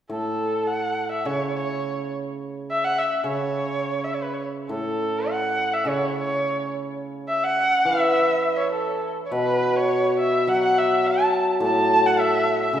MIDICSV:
0, 0, Header, 1, 3, 480
1, 0, Start_track
1, 0, Tempo, 570885
1, 90, Time_signature, 2, 2, 24, 8
1, 2967, Tempo, 579151
1, 8727, Tempo, 567644
1, 10690, End_track
2, 0, Start_track
2, 0, Title_t, "Erhu"
2, 0, Program_c, 0, 110
2, 92, Note_on_c, 0, 69, 67
2, 565, Note_on_c, 0, 78, 81
2, 577, Note_off_c, 0, 69, 0
2, 935, Note_off_c, 0, 78, 0
2, 939, Note_on_c, 0, 76, 68
2, 1059, Note_on_c, 0, 73, 77
2, 1071, Note_off_c, 0, 76, 0
2, 1301, Note_off_c, 0, 73, 0
2, 1308, Note_on_c, 0, 73, 69
2, 1750, Note_off_c, 0, 73, 0
2, 2274, Note_on_c, 0, 76, 82
2, 2390, Note_on_c, 0, 78, 94
2, 2403, Note_off_c, 0, 76, 0
2, 2509, Note_on_c, 0, 76, 81
2, 2522, Note_off_c, 0, 78, 0
2, 2738, Note_off_c, 0, 76, 0
2, 2743, Note_on_c, 0, 73, 77
2, 3389, Note_on_c, 0, 76, 58
2, 3402, Note_off_c, 0, 73, 0
2, 3475, Note_on_c, 0, 73, 54
2, 3488, Note_off_c, 0, 76, 0
2, 3543, Note_on_c, 0, 71, 50
2, 3555, Note_off_c, 0, 73, 0
2, 3634, Note_on_c, 0, 73, 51
2, 3646, Note_off_c, 0, 71, 0
2, 3701, Note_off_c, 0, 73, 0
2, 3941, Note_on_c, 0, 69, 72
2, 4436, Note_on_c, 0, 78, 84
2, 4449, Note_off_c, 0, 69, 0
2, 4795, Note_on_c, 0, 76, 77
2, 4808, Note_off_c, 0, 78, 0
2, 4919, Note_on_c, 0, 73, 76
2, 4931, Note_off_c, 0, 76, 0
2, 5151, Note_off_c, 0, 73, 0
2, 5169, Note_on_c, 0, 73, 73
2, 5597, Note_off_c, 0, 73, 0
2, 6078, Note_on_c, 0, 76, 86
2, 6210, Note_on_c, 0, 78, 101
2, 6222, Note_off_c, 0, 76, 0
2, 6553, Note_on_c, 0, 76, 88
2, 6565, Note_off_c, 0, 78, 0
2, 7131, Note_off_c, 0, 76, 0
2, 7131, Note_on_c, 0, 76, 52
2, 7143, Note_on_c, 0, 73, 71
2, 7155, Note_off_c, 0, 76, 0
2, 7270, Note_off_c, 0, 73, 0
2, 7276, Note_on_c, 0, 69, 59
2, 7618, Note_off_c, 0, 69, 0
2, 7719, Note_on_c, 0, 73, 48
2, 7766, Note_on_c, 0, 71, 80
2, 7778, Note_off_c, 0, 73, 0
2, 8134, Note_on_c, 0, 73, 89
2, 8146, Note_off_c, 0, 71, 0
2, 8490, Note_off_c, 0, 73, 0
2, 8495, Note_on_c, 0, 76, 81
2, 8736, Note_on_c, 0, 78, 92
2, 8749, Note_off_c, 0, 76, 0
2, 8841, Note_off_c, 0, 78, 0
2, 8846, Note_on_c, 0, 78, 85
2, 8982, Note_on_c, 0, 76, 83
2, 8995, Note_off_c, 0, 78, 0
2, 9228, Note_on_c, 0, 81, 95
2, 9241, Note_off_c, 0, 76, 0
2, 9579, Note_off_c, 0, 81, 0
2, 9713, Note_on_c, 0, 81, 99
2, 10065, Note_on_c, 0, 78, 86
2, 10078, Note_off_c, 0, 81, 0
2, 10180, Note_on_c, 0, 76, 88
2, 10192, Note_off_c, 0, 78, 0
2, 10535, Note_off_c, 0, 76, 0
2, 10547, Note_on_c, 0, 76, 76
2, 10690, Note_off_c, 0, 76, 0
2, 10690, End_track
3, 0, Start_track
3, 0, Title_t, "Hammered dulcimer"
3, 0, Program_c, 1, 15
3, 80, Note_on_c, 1, 45, 47
3, 1053, Note_on_c, 1, 49, 47
3, 1058, Note_off_c, 1, 45, 0
3, 2485, Note_off_c, 1, 49, 0
3, 2723, Note_on_c, 1, 49, 51
3, 3932, Note_on_c, 1, 45, 46
3, 3935, Note_off_c, 1, 49, 0
3, 4891, Note_on_c, 1, 49, 53
3, 4903, Note_off_c, 1, 45, 0
3, 6313, Note_off_c, 1, 49, 0
3, 6549, Note_on_c, 1, 52, 50
3, 7763, Note_on_c, 1, 47, 53
3, 8008, Note_off_c, 1, 52, 0
3, 8723, Note_on_c, 1, 54, 56
3, 9210, Note_off_c, 1, 47, 0
3, 9678, Note_on_c, 1, 45, 60
3, 10165, Note_off_c, 1, 54, 0
3, 10633, Note_on_c, 1, 49, 55
3, 10645, Note_off_c, 1, 45, 0
3, 10690, Note_off_c, 1, 49, 0
3, 10690, End_track
0, 0, End_of_file